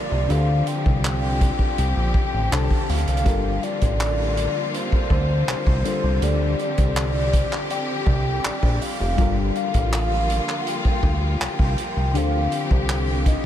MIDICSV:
0, 0, Header, 1, 6, 480
1, 0, Start_track
1, 0, Key_signature, -2, "minor"
1, 0, Tempo, 740741
1, 191, Time_signature, 4, 2, 24, 8
1, 8720, End_track
2, 0, Start_track
2, 0, Title_t, "Soft synth lead"
2, 0, Program_c, 0, 80
2, 0, Note_on_c, 0, 74, 113
2, 199, Note_on_c, 0, 77, 109
2, 209, Note_off_c, 0, 74, 0
2, 437, Note_on_c, 0, 79, 119
2, 446, Note_off_c, 0, 77, 0
2, 1154, Note_off_c, 0, 79, 0
2, 1160, Note_on_c, 0, 79, 114
2, 1641, Note_on_c, 0, 81, 111
2, 1651, Note_off_c, 0, 79, 0
2, 1876, Note_on_c, 0, 77, 105
2, 1885, Note_off_c, 0, 81, 0
2, 2354, Note_on_c, 0, 74, 110
2, 2364, Note_off_c, 0, 77, 0
2, 3073, Note_off_c, 0, 74, 0
2, 3076, Note_on_c, 0, 72, 97
2, 3297, Note_off_c, 0, 72, 0
2, 3317, Note_on_c, 0, 72, 96
2, 4038, Note_on_c, 0, 74, 100
2, 4048, Note_off_c, 0, 72, 0
2, 4275, Note_off_c, 0, 74, 0
2, 4279, Note_on_c, 0, 74, 100
2, 4994, Note_on_c, 0, 79, 109
2, 5004, Note_off_c, 0, 74, 0
2, 5478, Note_on_c, 0, 74, 100
2, 5488, Note_off_c, 0, 79, 0
2, 5714, Note_on_c, 0, 77, 105
2, 5724, Note_off_c, 0, 74, 0
2, 6193, Note_off_c, 0, 77, 0
2, 6199, Note_on_c, 0, 77, 103
2, 6874, Note_on_c, 0, 78, 74
2, 6884, Note_off_c, 0, 77, 0
2, 6918, Note_on_c, 0, 79, 115
2, 6928, Note_off_c, 0, 78, 0
2, 7393, Note_off_c, 0, 79, 0
2, 7397, Note_on_c, 0, 79, 109
2, 7881, Note_on_c, 0, 77, 95
2, 7891, Note_off_c, 0, 79, 0
2, 8356, Note_off_c, 0, 77, 0
2, 8596, Note_on_c, 0, 75, 124
2, 8720, Note_off_c, 0, 75, 0
2, 8720, End_track
3, 0, Start_track
3, 0, Title_t, "FM electric piano"
3, 0, Program_c, 1, 5
3, 0, Control_c, 1, 64, 127
3, 0, Note_on_c, 1, 55, 65
3, 0, Note_on_c, 1, 62, 62
3, 0, Note_on_c, 1, 65, 60
3, 0, Note_on_c, 1, 69, 63
3, 0, Note_on_c, 1, 70, 72
3, 160, Note_off_c, 1, 55, 0
3, 164, Note_off_c, 1, 62, 0
3, 167, Note_off_c, 1, 65, 0
3, 171, Note_off_c, 1, 69, 0
3, 174, Note_off_c, 1, 70, 0
3, 182, Note_on_c, 1, 50, 63
3, 188, Note_on_c, 1, 62, 62
3, 194, Note_on_c, 1, 67, 60
3, 201, Control_c, 1, 64, 0
3, 201, Note_on_c, 1, 69, 59
3, 208, Note_on_c, 1, 71, 59
3, 242, Note_off_c, 1, 71, 0
3, 249, Note_on_c, 1, 72, 74
3, 333, Control_c, 1, 64, 127
3, 1600, Note_off_c, 1, 50, 0
3, 1604, Note_off_c, 1, 62, 0
3, 1606, Note_off_c, 1, 67, 0
3, 1610, Note_off_c, 1, 69, 0
3, 1627, Note_on_c, 1, 50, 50
3, 1631, Note_on_c, 1, 62, 48
3, 1634, Note_off_c, 1, 72, 0
3, 1635, Note_on_c, 1, 67, 49
3, 1639, Note_on_c, 1, 69, 46
3, 1642, Note_on_c, 1, 72, 57
3, 2098, Note_off_c, 1, 62, 0
3, 2099, Note_on_c, 1, 55, 65
3, 2106, Note_on_c, 1, 62, 60
3, 2109, Note_off_c, 1, 50, 0
3, 2113, Note_off_c, 1, 67, 0
3, 2113, Note_off_c, 1, 69, 0
3, 2114, Note_on_c, 1, 65, 59
3, 2116, Note_off_c, 1, 72, 0
3, 2119, Control_c, 1, 64, 0
3, 2121, Note_on_c, 1, 69, 58
3, 2128, Note_on_c, 1, 70, 71
3, 2247, Control_c, 1, 64, 127
3, 3759, Note_off_c, 1, 55, 0
3, 3763, Note_off_c, 1, 62, 0
3, 3766, Note_off_c, 1, 65, 0
3, 3770, Note_off_c, 1, 69, 0
3, 3774, Note_off_c, 1, 70, 0
3, 3788, Note_on_c, 1, 55, 55
3, 3791, Note_on_c, 1, 62, 51
3, 3795, Note_on_c, 1, 65, 47
3, 3797, Note_on_c, 1, 69, 50
3, 3802, Note_on_c, 1, 72, 62
3, 4020, Note_off_c, 1, 62, 0
3, 4021, Note_on_c, 1, 50, 63
3, 4028, Note_on_c, 1, 62, 58
3, 4030, Note_off_c, 1, 55, 0
3, 4033, Note_off_c, 1, 65, 0
3, 4033, Note_off_c, 1, 69, 0
3, 4034, Note_on_c, 1, 67, 58
3, 4036, Note_off_c, 1, 72, 0
3, 4039, Control_c, 1, 64, 0
3, 4040, Note_on_c, 1, 69, 61
3, 4048, Note_on_c, 1, 72, 68
3, 4144, Control_c, 1, 64, 127
3, 5920, Note_off_c, 1, 50, 0
3, 5923, Note_off_c, 1, 62, 0
3, 5926, Note_off_c, 1, 67, 0
3, 5930, Note_off_c, 1, 69, 0
3, 5933, Note_off_c, 1, 72, 0
3, 5939, Note_on_c, 1, 55, 68
3, 5945, Note_on_c, 1, 62, 63
3, 5951, Note_on_c, 1, 65, 62
3, 5959, Note_on_c, 1, 69, 59
3, 5960, Control_c, 1, 64, 0
3, 5966, Note_on_c, 1, 70, 71
3, 6071, Control_c, 1, 64, 127
3, 7839, Note_off_c, 1, 55, 0
3, 7842, Note_off_c, 1, 62, 0
3, 7845, Note_off_c, 1, 65, 0
3, 7849, Note_off_c, 1, 69, 0
3, 7852, Note_off_c, 1, 70, 0
3, 7862, Note_on_c, 1, 50, 67
3, 7869, Note_on_c, 1, 62, 61
3, 7876, Note_on_c, 1, 67, 58
3, 7881, Control_c, 1, 64, 0
3, 7882, Note_on_c, 1, 69, 61
3, 7889, Note_on_c, 1, 72, 74
3, 7973, Control_c, 1, 64, 127
3, 8720, Note_off_c, 1, 50, 0
3, 8720, Note_off_c, 1, 62, 0
3, 8720, Note_off_c, 1, 67, 0
3, 8720, Note_off_c, 1, 69, 0
3, 8720, Note_off_c, 1, 72, 0
3, 8720, End_track
4, 0, Start_track
4, 0, Title_t, "String section"
4, 0, Program_c, 2, 48
4, 0, Note_on_c, 2, 50, 86
4, 0, Note_on_c, 2, 53, 74
4, 0, Note_on_c, 2, 55, 75
4, 0, Note_on_c, 2, 58, 78
4, 0, Note_on_c, 2, 65, 94
4, 172, Note_off_c, 2, 58, 0
4, 172, Note_off_c, 2, 65, 0
4, 195, Note_on_c, 2, 60, 77
4, 196, Note_on_c, 2, 67, 86
4, 2084, Note_off_c, 2, 55, 0
4, 2094, Note_off_c, 2, 60, 0
4, 2094, Note_off_c, 2, 67, 0
4, 2113, Note_on_c, 2, 65, 90
4, 2114, Note_on_c, 2, 58, 77
4, 2115, Note_on_c, 2, 55, 75
4, 4013, Note_off_c, 2, 58, 0
4, 4013, Note_off_c, 2, 65, 0
4, 4033, Note_on_c, 2, 60, 73
4, 4033, Note_on_c, 2, 67, 93
4, 5925, Note_off_c, 2, 53, 0
4, 5933, Note_off_c, 2, 60, 0
4, 5933, Note_off_c, 2, 67, 0
4, 5954, Note_on_c, 2, 58, 78
4, 5955, Note_on_c, 2, 65, 95
4, 5956, Note_on_c, 2, 53, 77
4, 7847, Note_off_c, 2, 55, 0
4, 7853, Note_off_c, 2, 58, 0
4, 7854, Note_off_c, 2, 65, 0
4, 7872, Note_on_c, 2, 60, 79
4, 7873, Note_on_c, 2, 55, 78
4, 7874, Note_on_c, 2, 67, 96
4, 8720, Note_off_c, 2, 50, 0
4, 8720, Note_off_c, 2, 53, 0
4, 8720, Note_off_c, 2, 55, 0
4, 8720, Note_off_c, 2, 60, 0
4, 8720, Note_off_c, 2, 67, 0
4, 8720, End_track
5, 0, Start_track
5, 0, Title_t, "Analog synth bass"
5, 0, Program_c, 3, 38
5, 75, Note_on_c, 3, 36, 89
5, 180, Note_off_c, 3, 36, 0
5, 194, Note_on_c, 3, 38, 105
5, 406, Note_off_c, 3, 38, 0
5, 558, Note_on_c, 3, 36, 93
5, 982, Note_off_c, 3, 36, 0
5, 1154, Note_on_c, 3, 36, 92
5, 1259, Note_off_c, 3, 36, 0
5, 1275, Note_on_c, 3, 34, 96
5, 1380, Note_off_c, 3, 34, 0
5, 1513, Note_on_c, 3, 33, 86
5, 1619, Note_off_c, 3, 33, 0
5, 1634, Note_on_c, 3, 36, 102
5, 1740, Note_off_c, 3, 36, 0
5, 1876, Note_on_c, 3, 38, 92
5, 1980, Note_off_c, 3, 38, 0
5, 1994, Note_on_c, 3, 36, 87
5, 2100, Note_off_c, 3, 36, 0
5, 2112, Note_on_c, 3, 31, 109
5, 2325, Note_off_c, 3, 31, 0
5, 2477, Note_on_c, 3, 33, 88
5, 2901, Note_off_c, 3, 33, 0
5, 3307, Note_on_c, 3, 38, 103
5, 3522, Note_off_c, 3, 38, 0
5, 3550, Note_on_c, 3, 36, 50
5, 3598, Note_off_c, 3, 36, 0
5, 3673, Note_on_c, 3, 36, 99
5, 3779, Note_off_c, 3, 36, 0
5, 3911, Note_on_c, 3, 36, 97
5, 4018, Note_off_c, 3, 36, 0
5, 4031, Note_on_c, 3, 38, 108
5, 4244, Note_off_c, 3, 38, 0
5, 4396, Note_on_c, 3, 36, 91
5, 4821, Note_off_c, 3, 36, 0
5, 5226, Note_on_c, 3, 36, 96
5, 5442, Note_off_c, 3, 36, 0
5, 5474, Note_on_c, 3, 34, 52
5, 5521, Note_off_c, 3, 34, 0
5, 5591, Note_on_c, 3, 34, 97
5, 5698, Note_off_c, 3, 34, 0
5, 5833, Note_on_c, 3, 29, 98
5, 5939, Note_off_c, 3, 29, 0
5, 6316, Note_on_c, 3, 33, 88
5, 6741, Note_off_c, 3, 33, 0
5, 7148, Note_on_c, 3, 38, 111
5, 7363, Note_off_c, 3, 38, 0
5, 7394, Note_on_c, 3, 36, 52
5, 7441, Note_off_c, 3, 36, 0
5, 7512, Note_on_c, 3, 36, 94
5, 7618, Note_off_c, 3, 36, 0
5, 7754, Note_on_c, 3, 36, 82
5, 7872, Note_on_c, 3, 38, 111
5, 7882, Note_off_c, 3, 36, 0
5, 8085, Note_off_c, 3, 38, 0
5, 8236, Note_on_c, 3, 36, 91
5, 8661, Note_off_c, 3, 36, 0
5, 8720, End_track
6, 0, Start_track
6, 0, Title_t, "Drums"
6, 193, Note_on_c, 9, 42, 71
6, 258, Note_off_c, 9, 42, 0
6, 432, Note_on_c, 9, 42, 67
6, 497, Note_off_c, 9, 42, 0
6, 557, Note_on_c, 9, 36, 94
6, 622, Note_off_c, 9, 36, 0
6, 676, Note_on_c, 9, 42, 70
6, 679, Note_on_c, 9, 39, 120
6, 741, Note_off_c, 9, 42, 0
6, 744, Note_off_c, 9, 39, 0
6, 914, Note_on_c, 9, 36, 93
6, 915, Note_on_c, 9, 42, 76
6, 979, Note_off_c, 9, 36, 0
6, 979, Note_off_c, 9, 42, 0
6, 1030, Note_on_c, 9, 36, 89
6, 1095, Note_off_c, 9, 36, 0
6, 1154, Note_on_c, 9, 42, 82
6, 1219, Note_off_c, 9, 42, 0
6, 1388, Note_on_c, 9, 36, 97
6, 1453, Note_off_c, 9, 36, 0
6, 1634, Note_on_c, 9, 42, 65
6, 1639, Note_on_c, 9, 39, 106
6, 1698, Note_off_c, 9, 42, 0
6, 1704, Note_off_c, 9, 39, 0
6, 1753, Note_on_c, 9, 36, 91
6, 1818, Note_off_c, 9, 36, 0
6, 1874, Note_on_c, 9, 42, 37
6, 1874, Note_on_c, 9, 46, 71
6, 1934, Note_off_c, 9, 42, 0
6, 1934, Note_on_c, 9, 42, 49
6, 1939, Note_off_c, 9, 46, 0
6, 1992, Note_off_c, 9, 42, 0
6, 1992, Note_on_c, 9, 42, 57
6, 2053, Note_off_c, 9, 42, 0
6, 2053, Note_on_c, 9, 42, 60
6, 2111, Note_off_c, 9, 42, 0
6, 2111, Note_on_c, 9, 36, 110
6, 2111, Note_on_c, 9, 42, 72
6, 2175, Note_off_c, 9, 42, 0
6, 2176, Note_off_c, 9, 36, 0
6, 2351, Note_on_c, 9, 42, 42
6, 2416, Note_off_c, 9, 42, 0
6, 2471, Note_on_c, 9, 42, 66
6, 2475, Note_on_c, 9, 36, 97
6, 2536, Note_off_c, 9, 42, 0
6, 2540, Note_off_c, 9, 36, 0
6, 2593, Note_on_c, 9, 42, 69
6, 2596, Note_on_c, 9, 39, 113
6, 2658, Note_off_c, 9, 42, 0
6, 2661, Note_off_c, 9, 39, 0
6, 2832, Note_on_c, 9, 42, 79
6, 2897, Note_off_c, 9, 42, 0
6, 3073, Note_on_c, 9, 42, 81
6, 3138, Note_off_c, 9, 42, 0
6, 3191, Note_on_c, 9, 36, 92
6, 3255, Note_off_c, 9, 36, 0
6, 3306, Note_on_c, 9, 36, 99
6, 3371, Note_off_c, 9, 36, 0
6, 3550, Note_on_c, 9, 42, 61
6, 3556, Note_on_c, 9, 39, 104
6, 3615, Note_off_c, 9, 42, 0
6, 3620, Note_off_c, 9, 39, 0
6, 3671, Note_on_c, 9, 36, 96
6, 3736, Note_off_c, 9, 36, 0
6, 3792, Note_on_c, 9, 42, 61
6, 3857, Note_off_c, 9, 42, 0
6, 4031, Note_on_c, 9, 42, 69
6, 4095, Note_off_c, 9, 42, 0
6, 4271, Note_on_c, 9, 42, 39
6, 4336, Note_off_c, 9, 42, 0
6, 4391, Note_on_c, 9, 42, 65
6, 4394, Note_on_c, 9, 36, 92
6, 4455, Note_off_c, 9, 42, 0
6, 4459, Note_off_c, 9, 36, 0
6, 4512, Note_on_c, 9, 42, 74
6, 4516, Note_on_c, 9, 39, 115
6, 4577, Note_off_c, 9, 42, 0
6, 4580, Note_off_c, 9, 39, 0
6, 4751, Note_on_c, 9, 42, 82
6, 4752, Note_on_c, 9, 36, 89
6, 4816, Note_off_c, 9, 42, 0
6, 4817, Note_off_c, 9, 36, 0
6, 4878, Note_on_c, 9, 39, 66
6, 4942, Note_off_c, 9, 39, 0
6, 4991, Note_on_c, 9, 42, 74
6, 5056, Note_off_c, 9, 42, 0
6, 5226, Note_on_c, 9, 36, 101
6, 5291, Note_off_c, 9, 36, 0
6, 5470, Note_on_c, 9, 42, 60
6, 5476, Note_on_c, 9, 39, 112
6, 5535, Note_off_c, 9, 42, 0
6, 5540, Note_off_c, 9, 39, 0
6, 5591, Note_on_c, 9, 36, 90
6, 5656, Note_off_c, 9, 36, 0
6, 5712, Note_on_c, 9, 46, 68
6, 5777, Note_off_c, 9, 46, 0
6, 5950, Note_on_c, 9, 36, 116
6, 5950, Note_on_c, 9, 42, 70
6, 6015, Note_off_c, 9, 36, 0
6, 6015, Note_off_c, 9, 42, 0
6, 6191, Note_on_c, 9, 42, 41
6, 6256, Note_off_c, 9, 42, 0
6, 6311, Note_on_c, 9, 42, 71
6, 6314, Note_on_c, 9, 36, 96
6, 6376, Note_off_c, 9, 42, 0
6, 6379, Note_off_c, 9, 36, 0
6, 6433, Note_on_c, 9, 42, 70
6, 6436, Note_on_c, 9, 39, 123
6, 6498, Note_off_c, 9, 42, 0
6, 6501, Note_off_c, 9, 39, 0
6, 6672, Note_on_c, 9, 42, 78
6, 6737, Note_off_c, 9, 42, 0
6, 6797, Note_on_c, 9, 39, 65
6, 6862, Note_off_c, 9, 39, 0
6, 6912, Note_on_c, 9, 42, 83
6, 6977, Note_off_c, 9, 42, 0
6, 7031, Note_on_c, 9, 36, 93
6, 7095, Note_off_c, 9, 36, 0
6, 7147, Note_on_c, 9, 36, 101
6, 7211, Note_off_c, 9, 36, 0
6, 7391, Note_on_c, 9, 42, 64
6, 7397, Note_on_c, 9, 39, 107
6, 7456, Note_off_c, 9, 42, 0
6, 7462, Note_off_c, 9, 39, 0
6, 7511, Note_on_c, 9, 36, 94
6, 7576, Note_off_c, 9, 36, 0
6, 7632, Note_on_c, 9, 42, 64
6, 7697, Note_off_c, 9, 42, 0
6, 7873, Note_on_c, 9, 42, 72
6, 7938, Note_off_c, 9, 42, 0
6, 8111, Note_on_c, 9, 42, 65
6, 8176, Note_off_c, 9, 42, 0
6, 8235, Note_on_c, 9, 36, 97
6, 8300, Note_off_c, 9, 36, 0
6, 8353, Note_on_c, 9, 42, 72
6, 8356, Note_on_c, 9, 39, 116
6, 8418, Note_off_c, 9, 42, 0
6, 8421, Note_off_c, 9, 39, 0
6, 8592, Note_on_c, 9, 36, 94
6, 8592, Note_on_c, 9, 42, 77
6, 8657, Note_off_c, 9, 36, 0
6, 8657, Note_off_c, 9, 42, 0
6, 8720, End_track
0, 0, End_of_file